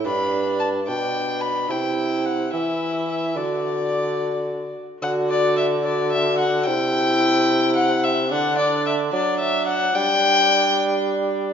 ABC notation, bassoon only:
X:1
M:6/8
L:1/8
Q:3/8=73
K:Dmix
V:1 name="Bassoon" clef=bass
G,,3 B,,3 | C,3 E,3 | D,4- D, z | D,6 |
C,6 | D,3 F,3 | G,6 |]